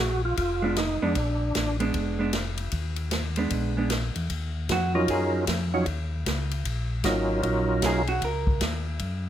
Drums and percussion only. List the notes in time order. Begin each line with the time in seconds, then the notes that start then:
0.37 kick, ride
0.76 snare, hi-hat pedal, ride
1.15 kick, ride
1.55 snare, hi-hat pedal, ride
1.80 ride
1.94 kick, ride
2.33 snare, hi-hat pedal, ride
2.58 ride
2.72 kick, ride
2.96 ride
3.11 snare, hi-hat pedal, ride
3.36 ride
3.50 kick, ride
3.90 snare, hi-hat pedal, ride
4.16 ride
4.30 kick, ride
4.69 kick, snare, hi-hat pedal, ride
5.08 kick, ride
5.47 kick, snare, hi-hat pedal, ride
5.86 kick, ride
6.26 kick, snare, hi-hat pedal, ride
6.51 ride
6.65 kick, ride
7.04 kick, snare, hi-hat pedal, ride
7.43 kick, ride
7.82 kick, snare, hi-hat pedal, ride
8.07 ride
8.22 kick, ride
8.47 kick
8.61 kick, snare, hi-hat pedal, ride
8.99 kick, ride